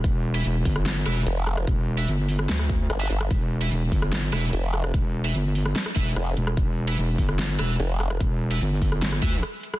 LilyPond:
<<
  \new Staff \with { instrumentName = "Distorted electric guitar" } { \time 4/4 \key e \phrygian \tempo 4 = 147 r8. <e' b' e''>16 r4. <e' b' e''>16 r4 r16 | r8. <e' b' e''>16 r2 r16 <e' b' e''>16 r8 | r8. <e' b' e''>16 r4. <e' b' e''>16 r4 r16 | r8. <e' b' e''>16 r4. <e' b' e''>16 r4 r16 |
r8. <e' b' e''>16 r4. <e' b' e''>16 r4 r16 | r8. <e' b' e''>16 r4. <e' b' e''>16 r4 r16 | }
  \new Staff \with { instrumentName = "Wobble bass" } { \clef bass \time 4/4 \key e \phrygian r2. f,,4 | r2. g,,8 g,,8 | r2. f,,4 | r2. f,,8 r8 |
r2. f,,4 | r1 | }
  \new Staff \with { instrumentName = "Wobble bass" } { \clef bass \time 4/4 \key e \phrygian e,,4 e,,8 g,,4 e,,8 r4 | e,,4 g,,4 d,4 r4 | e,,4 e,,8 g,,4 e,,8 r4 | e,,4 g,,4 r8 e,,8 r8 e,,8 |
e,,4 e,,8 g,,4 e,,8 r4 | e,,4 g,,4 g,,8 d,8 r4 | }
  \new DrumStaff \with { instrumentName = "Drums" } \drummode { \time 4/4 <hh bd>8. hh16 hh8 <hho bd>16 ss16 <hh sn>8 ss8 hh8 <hh ss>16 <hh ss>16 | <hh bd>8. hh16 hh8 hho16 ss16 <hh sn>16 ss16 bd8 <hh ss>8 hh16 <hh ss>16 | <hh bd>8. hh16 hh8 <hho bd>16 ss16 <hh sn>8 ss8 hh8 <hh ss>16 <hh ss>16 | <hh bd>8. hh16 hh8 hho16 ss16 <hh sn>16 ss16 bd8 <hh ss>8 hh16 <hh ss>16 |
<hh bd>8. hh16 hh8 <hho bd>16 ss16 <hh sn>8 ss8 hh8 <hh ss>16 <hh ss>16 | <hh bd>8. hh16 hh8 <hho bd>16 ss16 <hh sn>16 ss16 bd8 <hh ss>8 hh16 <hh ss>16 | }
>>